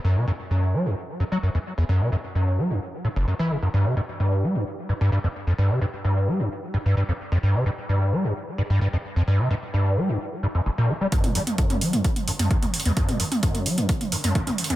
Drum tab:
HH |--------------------------------|--------------------------------|--------------------------------|--------------------------------|
T2 |--------------------------------|--------------------------------|--------------------------------|--------------------------------|
BD |--------------------------------|--------------------------------|--------------------------------|--------------------------------|

HH |--------------------------------|--------------------------------|x-x-o-x-x-x-o-x-x-x-o-x-x-x-oxx-|x-x-o-x-x-x-o-x-x-x-o-x-x-x-oxx-|
T2 |--------------------------------|--------------------------------|--o---o---o---o---o---o---o---o-|--o---o---o---o---o---o---o---o-|
BD |--------------------------------|--------------------------------|o-------o-------o-------o-------|o-------o-------o-------o-------|